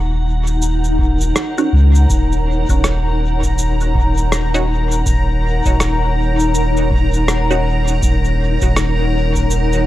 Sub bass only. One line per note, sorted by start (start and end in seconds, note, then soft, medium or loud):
0.00 1.33 D#1 loud
1.72 2.06 C#2 medium
2.10 2.65 D#1 loud
2.69 5.03 D#1 loud
5.06 5.61 D#1 loud
5.65 7.99 D#1 loud
8.02 8.57 D#1 loud
8.62 9.87 D#1 loud